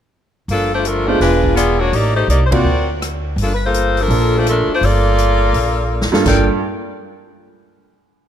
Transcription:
0.48 1.17 G1 medium
0.48 0.71 F3 medium
0.48 0.71 A#3 medium
0.48 0.71 D4 medium
0.48 0.71 A4 medium
0.48 open hi-hat soft
0.74 0.85 A3 medium
0.74 0.85 D4 medium
0.74 0.85 F4 medium
0.74 0.86 C5 medium
0.85 1.09 F3 medium
0.85 1.06 A3 medium
0.85 1.07 D4 medium
0.85 1.09 A#4 medium
0.85 closed hi-hat soft
1.07 1.55 G#3 medium
1.07 1.21 A3 medium
1.07 1.55 B3 medium
1.07 1.20 D4 medium
1.07 1.55 D4 medium
1.07 1.20 F4 medium
1.07 1.55 F4 medium
1.07 1.21 C5 medium
1.20 1.89 E1 medium
1.20 1.55 G#3 medium
1.20 1.55 D4 medium
1.20 1.55 F4 medium
1.20 1.55 B4 medium
1.20 snare soft
1.20 open hi-hat soft
1.44 kick soft
1.56 1.78 B3 medium
1.56 1.78 F4 medium
1.56 1.78 G#4 medium
1.56 1.78 D5 medium
1.56 cross-stick medium
1.56 closed hi-hat soft
1.80 1.92 A#3 medium
1.80 1.93 D4 medium
1.80 1.93 F#4 medium
1.80 1.94 C#5 medium
1.93 2.27 A1 medium
1.93 2.16 A#3 medium
1.93 2.15 D#4 medium
1.93 2.15 G4 medium
1.93 2.16 D5 medium
1.93 open hi-hat soft
2.16 2.29 A3 medium
2.16 2.29 D#4 medium
2.16 2.29 G4 medium
2.16 2.29 C5 medium
2.28 2.62 C2 medium
2.28 2.43 A#3 medium
2.28 2.43 D#4 medium
2.28 2.43 G4 medium
2.28 2.43 D5 medium
2.28 closed hi-hat soft
2.46 2.54 C5 medium
2.51 2.64 A#3 medium
2.51 2.64 C4 medium
2.51 2.88 C4 medium
2.51 2.64 F4 medium
2.51 2.64 F#4 medium
2.51 2.88 F#4 medium
2.51 2.88 A#4 medium
2.51 2.88 D5 medium
2.51 kick medium
2.51 ride medium
2.64 3.34 D2 medium
3.02 cross-stick medium
3.02 closed hi-hat soft
3.36 4.05 G1 medium
3.36 open hi-hat soft
3.42 3.53 F3 medium
3.42 3.53 A#3 medium
3.42 3.53 D4 medium
3.42 3.53 A4 medium
3.54 3.62 B4 medium
3.66 4.00 A#3 medium
3.66 3.99 F4 medium
3.66 3.99 A4 medium
3.66 3.99 C5 medium
3.74 closed hi-hat medium
3.97 open hi-hat soft
4.01 4.37 F3 medium
4.01 4.37 D4 medium
4.01 4.36 A4 medium
4.01 4.36 A#4 medium
4.08 4.64 A#1 medium
4.08 4.64 A#3 medium
4.08 4.64 D4 soft
4.08 4.64 F4 soft
4.08 4.65 A4 medium
4.08 open hi-hat soft
4.38 4.48 A3 medium
4.38 4.48 D4 medium
4.38 4.48 F4 medium
4.38 4.48 C5 medium
4.46 4.70 F3 medium
4.46 4.70 A3 medium
4.46 4.70 D4 medium
4.46 4.70 A#4 medium
4.46 cross-stick medium
4.46 closed hi-hat soft
4.68 muted upright bass stroke soft
4.74 4.84 A3 medium
4.74 4.84 D4 medium
4.74 4.84 F4 medium
4.74 4.84 C5 medium
4.81 5.50 G1 medium
4.81 6.14 A#3 medium
4.81 6.14 F4 medium
4.81 6.14 A4 medium
4.81 6.14 D5 loud
4.81 open hi-hat soft
5.18 closed hi-hat soft
5.53 6.08 A#1 medium
5.53 open hi-hat soft
6.01 snare medium
6.12 6.59 G2 medium
6.12 6.25 A#3 medium
6.12 6.25 D4 medium
6.12 6.25 F4 medium
6.12 6.25 A4 medium
6.12 muted upright bass stroke soft
6.12 snare medium
6.25 6.47 G1 medium
6.25 6.47 A#3 medium
6.25 6.47 D4 medium
6.25 6.47 F4 medium
6.25 6.48 F4 medium
6.25 6.47 A4 medium
6.25 6.48 A#4 medium
6.25 6.48 D5 medium
6.25 6.48 G5 medium
6.25 kick medium
6.25 snare medium
6.25 crash medium

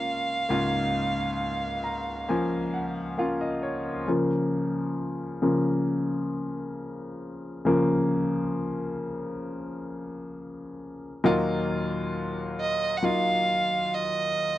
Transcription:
0.00 0.45 C#2 medium
0.00 0.45 G#2 medium
0.00 0.49 A#3 medium
0.00 0.50 C#4 medium
0.00 0.51 F4 medium
0.00 3.15 F5 medium
0.49 4.04 C#2 medium
0.49 4.04 G#2 medium
0.49 2.19 A#3 medium
0.49 2.20 C#4 medium
0.49 2.20 F4 medium
1.84 2.25 A#5 medium
2.29 3.14 F3 medium
2.29 3.13 A#3 medium
2.29 3.14 C#4 medium
2.29 2.70 G#5 medium
2.74 3.15 F#5 medium
3.18 4.03 A#3 medium
3.18 4.03 C#4 medium
3.18 4.03 F4 medium
3.18 3.39 F5 medium
3.41 3.61 D#5 medium
3.63 4.04 C#5 medium
4.07 5.38 C#3 soft
4.07 5.38 F3 soft
4.07 5.38 A#3 medium
5.42 5.82 C#3 soft
5.42 5.83 F3 soft
5.42 5.83 A#3 soft
7.65 11.19 C#3 medium
7.65 11.20 F3 medium
7.65 11.20 A#3 medium
11.24 14.58 D#2 medium
11.24 14.58 A#2 medium
11.24 12.94 F#3 medium
11.24 12.94 A#3 medium
11.24 12.94 D#4 medium
11.24 12.95 F4 loud
12.60 12.99 D#5 loud
12.97 13.06 F#5 medium
13.03 14.58 F#3 medium
13.03 14.58 A#3 medium
13.03 14.58 D#4 medium
13.03 14.58 F4 medium
13.03 13.96 F5 loud
13.94 14.58 D#5 loud

